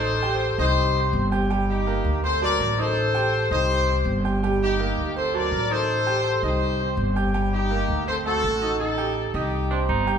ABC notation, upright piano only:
X:1
M:4/4
L:1/8
Q:1/4=164
K:Gm
V:1 name="Upright piano"
[Eee'] [Ggg']2 [Eee']2 [Ccc']2 [Ggg'] | [G,Gg]2 [B,Bb]2 [Ccc'] [^F,^Fa]2 [Eee']- | [Eee'] [Ggg']2 [Eee']2 [Ccc']2 [Ggg'] | [G,Gg]2 [B,Bb]2 [Ccc'] [^F,^Fa]2 [Eee']- |
[Eee'] [Ggg']2 [Eee']2 [Ccc']2 [Ggg'] | [G,Gg]2 [B,Bb]2 [Ccc'] [A,Aa]2 [Eee']- | [Eee'] [Ggg']2 [Eee']2 [Ccc']2 [Ggg'] |]